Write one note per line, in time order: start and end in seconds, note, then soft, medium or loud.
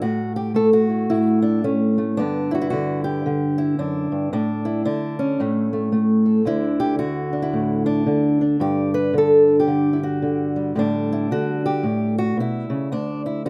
0.02 1.10 A2 medium
0.02 0.35 F#4 medium
0.36 0.55 G4 medium
0.54 1.63 A3 medium
0.54 0.72 A4 medium
0.73 1.42 F#4 medium
0.89 1.09 E4 soft
1.10 2.18 A2 medium
1.10 1.63 E4 medium
1.42 1.63 D4 medium
1.64 1.97 A3 medium
1.64 2.17 C#4 medium
1.98 2.15 A3 soft
2.17 3.78 G2 medium
2.17 2.71 D3 soft
2.17 4.30 B3 soft
2.17 2.54 D4 medium
2.51 2.60 E4 medium
2.51 2.69 F#4 medium
2.62 3.25 E4 medium
2.70 3.25 D3 medium
2.70 3.04 F#4 medium
3.04 3.78 G4 medium
3.26 4.30 D3 medium
3.58 4.32 E4 medium
3.79 4.11 F#2 medium
3.79 4.32 D4 medium
4.12 4.32 G2 medium
4.33 4.86 A2 medium
4.33 4.84 D4 medium
4.65 5.19 E4 medium
4.85 5.39 D3 medium
4.85 5.39 D4 medium
5.19 6.47 C#4 medium
5.40 6.47 A2 medium
5.40 5.72 A3 soft
5.73 5.91 A3 soft
5.92 6.44 A3 medium
6.26 6.44 A4 soft
6.45 8.60 D2 medium
6.45 6.98 D3 soft
6.45 7.32 D4 soft
6.45 7.33 E4 medium
6.80 6.98 G4 loud
6.99 8.05 D3 medium
6.99 7.86 F#4 medium
7.33 7.86 D4 soft
7.42 8.40 E4 medium
7.53 8.07 A2 medium
7.86 8.40 D4 medium
8.06 9.12 D3 medium
8.41 9.48 D4 soft
8.60 10.73 G2 medium
8.60 8.94 G4 medium
8.94 9.15 B4 loud
9.14 9.66 D3 medium
9.18 9.59 A4 medium
9.48 9.93 D4 soft
9.60 10.47 G4 medium
9.67 10.21 D3 medium
9.93 10.02 E4 medium
10.03 10.77 F#4 medium
10.22 10.75 D3 medium
10.56 10.76 G3 soft
10.75 11.29 A2 medium
10.75 11.30 D3 soft
10.75 13.49 G3 soft
10.75 11.64 D4 medium
11.13 11.32 E4 medium
11.31 11.84 D3 medium
11.31 11.85 F#4 medium
11.66 12.18 G4 loud
11.83 12.37 A2 medium
12.18 12.38 F#4 medium
12.37 12.69 B2 medium
12.37 12.92 E4 medium
12.70 12.91 C#3 medium
12.92 13.49 D2 medium
12.92 13.25 D4 medium
13.26 13.45 E4 medium
13.45 13.49 D3 medium
13.45 13.49 F#4 medium